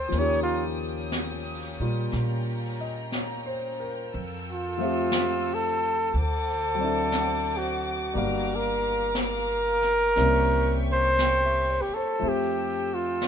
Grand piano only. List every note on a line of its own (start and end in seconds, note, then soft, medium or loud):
0.00 0.11 G3 soft
0.00 0.12 A3 soft
0.00 0.12 C4 soft
0.00 0.13 E4 soft
0.00 0.13 G4 soft
0.09 4.12 F3 soft
0.09 1.78 A#3 soft
0.15 4.15 C#4 soft
0.15 4.17 D#4 soft
0.20 4.18 G4 medium
1.80 4.14 G3 soft
1.80 4.14 A#3 soft
1.80 4.15 F4 soft
2.81 3.32 D#5 soft
3.13 3.77 C#5 soft
3.46 3.98 C5 soft
3.80 4.32 A#4 soft
4.78 6.12 F3 soft
4.78 6.13 A3 soft
4.78 6.14 C4 soft
4.82 6.15 G4 medium
4.82 6.14 E5 soft
6.74 8.11 F#3 soft
6.74 8.13 C4 soft
6.80 8.14 D4 soft
6.80 8.16 E4 soft
6.86 8.17 A4 medium
8.13 10.15 G3 soft
8.13 10.16 A#3 soft
8.13 10.17 D4 soft
8.18 10.18 A#4 medium
8.18 10.18 F5 soft
10.16 12.20 G3 soft
10.16 12.21 A#3 medium
10.16 12.20 C4 soft
10.16 12.20 C#4 soft
10.16 12.20 E4 soft
11.20 11.67 G5 soft
11.45 11.88 E5 soft
11.70 12.01 C#5 soft
11.96 12.31 C5 medium
12.19 13.28 F3 soft
12.19 13.28 A3 soft
12.19 13.28 C4 soft
12.19 13.28 E5 soft
12.24 13.28 G4 soft